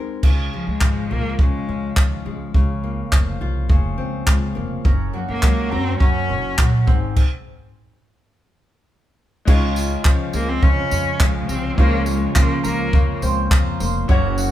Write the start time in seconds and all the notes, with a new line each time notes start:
Already playing: G#3 C4 D#4 A#4
0.23 C#2 C#3, kick, crash
0.53 F3 G#3
0.67 C#2 G#3
0.81 G#1 F3, kick, clap
1.11 C#2 A#3 F4
1.39 C#3 G#3, kick
1.69 C#2 C#4
1.96 D#2 F3, kick, clap
2.26 C#2 G#3
2.54 C#2 C#3, kick
2.84 A#3
3.12 F1 F3, kick, clap
3.41 C2 F4
3.69 F1 C#3, kick
3.98 C#2 C4
4.27 C#2 F3, kick, clap
4.55 F1 A#3
4.85 F#1 F#2 C#4 A#5, kick
5.13 F#3 A#3 F#4
5.28 F#1 A#3
5.42 C#2 F#3 C#5, kick, clap
5.70 F#2 C4 F#4 A#5
5.99 F#2 C#4 F#4, kick
6.29 F#1 C#4 C#5
6.58 A#1 F#3 F#4, kick, clap
6.87 G#1 G#2 C4, kick
7.16 kick, crash
9.45 C#2 C#3 G#3 C#4 D#4 F4, kick, crash
9.50 C#5
9.54 F4
9.76 F4, tambourine
10.05 C#3 F3 C#5, kick, clap
10.33 C#2 G#3 A#3 G#5, tambourine
10.49 C4
10.62 F2 C#3 C#4 F4, kick
10.91 F2 C#4 C#5, tambourine
11.20 C#2 F3 G#3 G#5, kick, clap
11.49 C2 G#3 C4 C#5, tambourine
11.76 C#2 C#3 A#3 C#4 F4 C5, kick
12.06 G#3 F4, tambourine
12.35 C#3 F3 A#3 C5, kick, clap
12.63 C#2 A#3 A#5, tambourine
12.93 F2 C#3 F4, kick
13.22 C#2 C4 C5, tambourine
13.51 F2 F3 A#5, kick, clap
13.80 F1 A#3 C5, tambourine
14.08 F#1 F#2 A#3 C#4 F#4 C#5, kick
14.38 F#4, tambourine